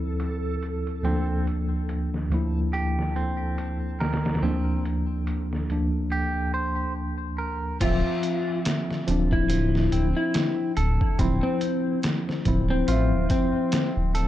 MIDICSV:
0, 0, Header, 1, 7, 480
1, 0, Start_track
1, 0, Key_signature, -1, "minor"
1, 0, Tempo, 845070
1, 595, Time_signature, 4, 2, 24, 8
1, 8110, End_track
2, 0, Start_track
2, 0, Title_t, "Synth texture"
2, 0, Program_c, 0, 99
2, 0, Note_on_c, 0, 69, 80
2, 3473, Note_off_c, 0, 69, 0
2, 8110, End_track
3, 0, Start_track
3, 0, Title_t, "Clean electric guitar"
3, 0, Program_c, 1, 27
3, 595, Note_on_c, 1, 60, 76
3, 825, Note_off_c, 1, 60, 0
3, 1552, Note_on_c, 1, 67, 71
3, 1784, Note_off_c, 1, 67, 0
3, 1795, Note_on_c, 1, 60, 65
3, 2255, Note_off_c, 1, 60, 0
3, 2274, Note_on_c, 1, 70, 69
3, 2505, Note_off_c, 1, 70, 0
3, 2514, Note_on_c, 1, 60, 73
3, 2744, Note_off_c, 1, 60, 0
3, 3474, Note_on_c, 1, 67, 74
3, 3705, Note_off_c, 1, 67, 0
3, 3714, Note_on_c, 1, 72, 89
3, 3934, Note_off_c, 1, 72, 0
3, 4194, Note_on_c, 1, 70, 67
3, 4415, Note_off_c, 1, 70, 0
3, 4436, Note_on_c, 1, 60, 85
3, 4666, Note_off_c, 1, 60, 0
3, 5394, Note_on_c, 1, 53, 84
3, 5625, Note_off_c, 1, 53, 0
3, 5636, Note_on_c, 1, 60, 70
3, 6096, Note_off_c, 1, 60, 0
3, 6116, Note_on_c, 1, 69, 74
3, 6345, Note_off_c, 1, 69, 0
3, 6355, Note_on_c, 1, 60, 82
3, 6585, Note_off_c, 1, 60, 0
3, 7317, Note_on_c, 1, 65, 80
3, 7546, Note_off_c, 1, 65, 0
3, 7558, Note_on_c, 1, 60, 74
3, 8017, Note_off_c, 1, 60, 0
3, 8036, Note_on_c, 1, 69, 76
3, 8110, Note_off_c, 1, 69, 0
3, 8110, End_track
4, 0, Start_track
4, 0, Title_t, "Electric slide guitar"
4, 0, Program_c, 2, 29
4, 4442, Note_on_c, 2, 65, 98
4, 4878, Note_off_c, 2, 65, 0
4, 5297, Note_on_c, 2, 64, 93
4, 5720, Note_off_c, 2, 64, 0
4, 5774, Note_on_c, 2, 64, 82
4, 6085, Note_off_c, 2, 64, 0
4, 6493, Note_on_c, 2, 60, 89
4, 6805, Note_off_c, 2, 60, 0
4, 7216, Note_on_c, 2, 60, 92
4, 7526, Note_off_c, 2, 60, 0
4, 7558, Note_on_c, 2, 60, 89
4, 7894, Note_off_c, 2, 60, 0
4, 8110, End_track
5, 0, Start_track
5, 0, Title_t, "Tine electric piano"
5, 0, Program_c, 3, 4
5, 0, Control_c, 3, 64, 127
5, 0, Note_on_c, 3, 38, 71
5, 0, Note_on_c, 3, 53, 65
5, 0, Note_on_c, 3, 60, 67
5, 0, Note_on_c, 3, 64, 71
5, 566, Note_off_c, 3, 38, 0
5, 570, Note_off_c, 3, 53, 0
5, 573, Note_off_c, 3, 60, 0
5, 576, Note_off_c, 3, 64, 0
5, 587, Note_on_c, 3, 38, 79
5, 594, Note_on_c, 3, 53, 75
5, 600, Note_on_c, 3, 58, 72
5, 602, Control_c, 3, 64, 0
5, 608, Note_on_c, 3, 62, 87
5, 691, Control_c, 3, 64, 127
5, 1287, Note_off_c, 3, 38, 0
5, 1290, Note_off_c, 3, 53, 0
5, 1294, Note_off_c, 3, 58, 0
5, 1298, Note_off_c, 3, 62, 0
5, 1306, Note_on_c, 3, 38, 75
5, 1316, Note_on_c, 3, 53, 72
5, 1322, Note_on_c, 3, 58, 64
5, 1328, Note_on_c, 3, 64, 81
5, 2487, Note_off_c, 3, 38, 0
5, 2492, Note_off_c, 3, 53, 0
5, 2494, Note_off_c, 3, 58, 0
5, 2498, Note_off_c, 3, 64, 0
5, 2513, Note_on_c, 3, 38, 79
5, 2516, Note_on_c, 3, 53, 74
5, 2520, Note_on_c, 3, 58, 73
5, 2524, Note_on_c, 3, 62, 84
5, 2605, Note_off_c, 3, 38, 0
5, 2607, Note_off_c, 3, 53, 0
5, 2608, Note_off_c, 3, 58, 0
5, 2610, Note_off_c, 3, 62, 0
5, 3237, Note_on_c, 3, 38, 64
5, 3240, Note_on_c, 3, 53, 58
5, 3246, Note_on_c, 3, 58, 59
5, 3248, Note_on_c, 3, 62, 74
5, 3452, Note_off_c, 3, 38, 0
5, 3453, Note_off_c, 3, 53, 0
5, 3456, Note_off_c, 3, 58, 0
5, 3458, Note_off_c, 3, 62, 0
5, 4433, Note_on_c, 3, 53, 89
5, 4443, Control_c, 3, 64, 0
5, 4443, Note_on_c, 3, 60, 82
5, 4454, Note_on_c, 3, 76, 101
5, 4540, Control_c, 3, 64, 127
5, 5130, Note_off_c, 3, 53, 0
5, 5135, Note_off_c, 3, 60, 0
5, 5140, Note_off_c, 3, 76, 0
5, 5151, Note_on_c, 3, 53, 86
5, 5163, Note_on_c, 3, 60, 73
5, 5173, Note_on_c, 3, 62, 91
5, 6329, Note_off_c, 3, 53, 0
5, 6335, Note_off_c, 3, 60, 0
5, 6340, Note_off_c, 3, 62, 0
5, 6355, Note_on_c, 3, 53, 85
5, 6362, Note_on_c, 3, 60, 82
5, 6366, Note_on_c, 3, 64, 96
5, 6446, Note_off_c, 3, 53, 0
5, 6450, Note_off_c, 3, 60, 0
5, 6451, Note_off_c, 3, 64, 0
5, 7078, Note_on_c, 3, 53, 72
5, 7083, Note_on_c, 3, 60, 66
5, 7088, Note_on_c, 3, 64, 80
5, 7292, Note_off_c, 3, 53, 0
5, 7295, Note_off_c, 3, 60, 0
5, 7297, Note_off_c, 3, 64, 0
5, 7315, Note_on_c, 3, 53, 78
5, 7327, Note_on_c, 3, 60, 73
5, 7338, Note_on_c, 3, 76, 90
5, 8110, Note_off_c, 3, 53, 0
5, 8110, Note_off_c, 3, 60, 0
5, 8110, Note_off_c, 3, 76, 0
5, 8110, End_track
6, 0, Start_track
6, 0, Title_t, "Detuned saw bass"
6, 0, Program_c, 4, 39
6, 4437, Note_on_c, 4, 26, 102
6, 4558, Note_off_c, 4, 26, 0
6, 5159, Note_on_c, 4, 26, 89
6, 5618, Note_off_c, 4, 26, 0
6, 5638, Note_on_c, 4, 26, 93
6, 5759, Note_off_c, 4, 26, 0
6, 6117, Note_on_c, 4, 26, 88
6, 6238, Note_off_c, 4, 26, 0
6, 6355, Note_on_c, 4, 26, 99
6, 6477, Note_off_c, 4, 26, 0
6, 7075, Note_on_c, 4, 26, 91
6, 7291, Note_off_c, 4, 26, 0
6, 7318, Note_on_c, 4, 33, 90
6, 7455, Note_on_c, 4, 26, 77
6, 7464, Note_off_c, 4, 33, 0
6, 7544, Note_off_c, 4, 26, 0
6, 7935, Note_on_c, 4, 26, 83
6, 8110, Note_off_c, 4, 26, 0
6, 8110, End_track
7, 0, Start_track
7, 0, Title_t, "Drums"
7, 112, Note_on_c, 9, 42, 81
7, 169, Note_off_c, 9, 42, 0
7, 355, Note_on_c, 9, 42, 55
7, 412, Note_off_c, 9, 42, 0
7, 494, Note_on_c, 9, 42, 40
7, 551, Note_off_c, 9, 42, 0
7, 594, Note_on_c, 9, 42, 74
7, 651, Note_off_c, 9, 42, 0
7, 836, Note_on_c, 9, 42, 59
7, 893, Note_off_c, 9, 42, 0
7, 1074, Note_on_c, 9, 42, 75
7, 1131, Note_off_c, 9, 42, 0
7, 1217, Note_on_c, 9, 38, 28
7, 1274, Note_off_c, 9, 38, 0
7, 1316, Note_on_c, 9, 42, 60
7, 1373, Note_off_c, 9, 42, 0
7, 1555, Note_on_c, 9, 42, 77
7, 1612, Note_off_c, 9, 42, 0
7, 1697, Note_on_c, 9, 38, 34
7, 1754, Note_off_c, 9, 38, 0
7, 1796, Note_on_c, 9, 42, 57
7, 1853, Note_off_c, 9, 42, 0
7, 2034, Note_on_c, 9, 42, 73
7, 2091, Note_off_c, 9, 42, 0
7, 2275, Note_on_c, 9, 42, 56
7, 2279, Note_on_c, 9, 38, 74
7, 2332, Note_off_c, 9, 42, 0
7, 2336, Note_off_c, 9, 38, 0
7, 2344, Note_on_c, 9, 42, 60
7, 2349, Note_on_c, 9, 38, 78
7, 2401, Note_off_c, 9, 42, 0
7, 2406, Note_off_c, 9, 38, 0
7, 2415, Note_on_c, 9, 42, 59
7, 2419, Note_on_c, 9, 38, 83
7, 2466, Note_off_c, 9, 42, 0
7, 2466, Note_on_c, 9, 42, 57
7, 2471, Note_off_c, 9, 38, 0
7, 2471, Note_on_c, 9, 38, 78
7, 2515, Note_off_c, 9, 42, 0
7, 2515, Note_on_c, 9, 42, 70
7, 2528, Note_off_c, 9, 38, 0
7, 2572, Note_off_c, 9, 42, 0
7, 2757, Note_on_c, 9, 42, 62
7, 2814, Note_off_c, 9, 42, 0
7, 2994, Note_on_c, 9, 42, 77
7, 3051, Note_off_c, 9, 42, 0
7, 3140, Note_on_c, 9, 38, 29
7, 3196, Note_off_c, 9, 38, 0
7, 3237, Note_on_c, 9, 42, 60
7, 3293, Note_off_c, 9, 42, 0
7, 4435, Note_on_c, 9, 42, 81
7, 4435, Note_on_c, 9, 49, 78
7, 4436, Note_on_c, 9, 36, 100
7, 4492, Note_off_c, 9, 36, 0
7, 4492, Note_off_c, 9, 42, 0
7, 4492, Note_off_c, 9, 49, 0
7, 4675, Note_on_c, 9, 42, 66
7, 4732, Note_off_c, 9, 42, 0
7, 4915, Note_on_c, 9, 42, 90
7, 4920, Note_on_c, 9, 38, 116
7, 4972, Note_off_c, 9, 42, 0
7, 4977, Note_off_c, 9, 38, 0
7, 5058, Note_on_c, 9, 38, 34
7, 5115, Note_off_c, 9, 38, 0
7, 5156, Note_on_c, 9, 42, 67
7, 5213, Note_off_c, 9, 42, 0
7, 5293, Note_on_c, 9, 36, 92
7, 5350, Note_off_c, 9, 36, 0
7, 5394, Note_on_c, 9, 42, 87
7, 5451, Note_off_c, 9, 42, 0
7, 5539, Note_on_c, 9, 38, 38
7, 5596, Note_off_c, 9, 38, 0
7, 5636, Note_on_c, 9, 42, 60
7, 5693, Note_off_c, 9, 42, 0
7, 5875, Note_on_c, 9, 42, 85
7, 5879, Note_on_c, 9, 38, 114
7, 5931, Note_off_c, 9, 42, 0
7, 5936, Note_off_c, 9, 38, 0
7, 6116, Note_on_c, 9, 42, 60
7, 6172, Note_off_c, 9, 42, 0
7, 6254, Note_on_c, 9, 36, 96
7, 6310, Note_off_c, 9, 36, 0
7, 6355, Note_on_c, 9, 36, 98
7, 6356, Note_on_c, 9, 42, 78
7, 6412, Note_off_c, 9, 36, 0
7, 6413, Note_off_c, 9, 42, 0
7, 6595, Note_on_c, 9, 42, 69
7, 6652, Note_off_c, 9, 42, 0
7, 6835, Note_on_c, 9, 42, 85
7, 6839, Note_on_c, 9, 38, 115
7, 6892, Note_off_c, 9, 42, 0
7, 6896, Note_off_c, 9, 38, 0
7, 6980, Note_on_c, 9, 38, 33
7, 7037, Note_off_c, 9, 38, 0
7, 7074, Note_on_c, 9, 42, 71
7, 7075, Note_on_c, 9, 36, 97
7, 7131, Note_off_c, 9, 42, 0
7, 7132, Note_off_c, 9, 36, 0
7, 7315, Note_on_c, 9, 42, 85
7, 7372, Note_off_c, 9, 42, 0
7, 7553, Note_on_c, 9, 42, 70
7, 7555, Note_on_c, 9, 36, 90
7, 7610, Note_off_c, 9, 42, 0
7, 7612, Note_off_c, 9, 36, 0
7, 7793, Note_on_c, 9, 42, 85
7, 7798, Note_on_c, 9, 38, 119
7, 7850, Note_off_c, 9, 42, 0
7, 7854, Note_off_c, 9, 38, 0
7, 8037, Note_on_c, 9, 42, 67
7, 8093, Note_off_c, 9, 42, 0
7, 8110, End_track
0, 0, End_of_file